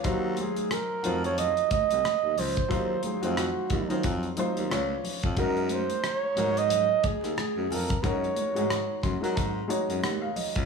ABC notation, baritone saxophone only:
X:1
M:4/4
L:1/16
Q:"Swing 16ths" 1/4=90
K:Ebdor
V:1 name="Baritone saxophone" clef=bass
E,,4 z2 F,,4 C,, C,, z E,, D,,2 | E,,2 z F,,2 z E,, E, F,,2 z E,, D,,2 z F,, | G,,4 z2 A,,4 E,, E,, z G,, F,,2 | G,,2 z A,,2 z G,, G, A,,2 z G,, E,,2 z D,, |]